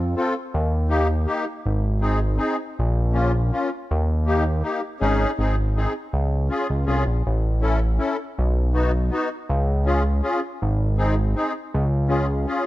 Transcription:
Already playing: F2
0.16 C4 F4 A4
0.54 D#2
0.89 A#3 D#4 G4
1.26 A#3 D#4 G4
1.66 G#1
2.01 C4 D#4 G#4
2.37 C4 D#4 G#4
2.79 A#1
3.13 A#3 C#4 F4
3.51 A#3 C#4 F4
3.91 D#2
4.26 A#3 D#4 G4
4.62 A#3 D#4 G4
5.00 G#1 C#4 D#4 G#4
5.38 G#1 C4 D#4 G#4
5.77 C4 D#4 G#4
6.13 C#2
6.49 C#4 F4 G#4
6.70 C#2
6.86 C2 C#4 F4 G#4
7.06 A#1
7.27 A1
7.61 C#4 E4 A4
7.98 C#4 E4 A4
8.38 B1
8.74 B3 D#4 F#4
9.10 B3 D#4 F#4
9.49 C#2
9.85 C#4 F4 G#4
10.23 C#4 F4 G#4
10.62 G#1
10.97 C4 D#4 G#4
11.35 C4 D#4 G#4
11.74 C#2
12.08 C#4 F4 G#4
12.46 C#4 F4 G#4

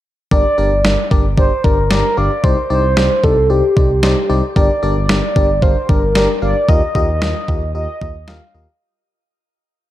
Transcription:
0.31 G1 D4 G4 A#4 D5, kick
0.58 G1 D4 G4 A#4 D5
0.71 G1
0.84 G1 D4 G4 A#4 D5, snare
1.11 G1 D4 G4 A#4 D5, kick
1.24 G1
1.37 G1 D4 G4 A#4 C5 D5, kick
1.64 G1 D4 G4 A#4 D5, kick
1.78 G1
1.91 G1 D4 G4 A#4 D5, snare
2.17 G1 D4 G4 A#4 D5 F5
2.44 C2 D#4 G4 C5 D5, kick
2.70 C2 D#4 G4 C5 D5
2.84 C2
2.97 C2 D#4 G4 C5 D5, snare
3.23 C2 D#4 G4 A4 C5 D5, kick
3.37 C2
3.50 C2 D#4 G4 C5 D5
3.76 C2 D#4 G4 C5 D5, kick
3.90 C2
4.03 C2 D#4 G4 C5 D5, snare
4.30 C2 D#4 G4 C5 D5
4.56 G1 D4 G4 A#4 D5, kick
4.83 G1 D4 G4 A#4 D5
4.96 G1
5.09 G1 D4 G4 A#4 D5, snare
5.36 G1 D4 G4 A#4 D5, kick
5.49 G1
5.62 G1 D4 G4 A#4 C5 F5, kick
5.89 G1 D4 G4 A#4 D5, kick
6.02 G1
6.15 G1 D4 G4 A#4 D5, snare
6.42 G1 D4 G4 A#4 D5 F5
6.69 D#2 F4 G4 A#4 D#5, kick
6.95 D#2 F4 G4 A#4 D#5, kick
7.08 D#2
7.21 D#2 F4 G4 A#4 D#5, snare
7.48 D#2 F4 G4 A#4 D#5, kick
7.61 D#2
7.75 D#2 F4 G4 A#4 D#5
8.01 D#2 F4 G4 A#4 D#5, kick
8.15 D#2
8.28 D#2 F4 G4 A#4 D#5 F5, snare
8.54 D#2 F4 G4 A#4 D#5

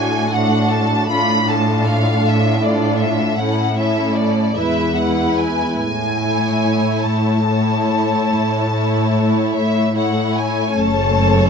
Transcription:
Already playing: A2 A3 D4 F#4 A4 G#5
0.32 A3 D4 F#4 A4 F#5
0.70 A5
1.09 A2 A3 D4 F4 A4 B5
1.48 A3 D4 F4 A4 A5
1.86 F5
2.24 A2 E5
2.62 A3 D4 F4 A4 D5
2.98 E5
3.36 A2 A3 C#4 E4 A4 F#5
3.77 A3 C#4 E4 A4 E5
4.15 D5
4.56 E2 G#3 E4 B4 E5
4.94 G#3 E4 B4 F#5
5.38 G#5
5.78 A2 G#5
6.21 A3 E4 C#5
7.03 A2 A5
7.45 A3 E4
7.49 E4 C#5
8.31 A2
8.71 A3 E4 C#5
9.54 A2 E5
9.94 A3 E4 C#5 F#5
10.36 G#5
10.76 F#1 F#2 A3 C#4 A4 C#5 A5

